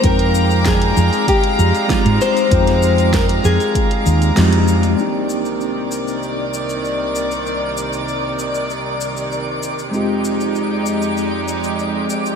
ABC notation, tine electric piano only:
X:1
M:4/4
L:1/8
Q:1/4=97
K:Cm
V:1 name="Tine electric piano"
[A,CEFg]6 [A,CEFG]2 | [A,CEFg]6 [A,CEFG]2 | [B,CDEG]8- | [B,CDEG]8 |
[A,CEFG]8 |]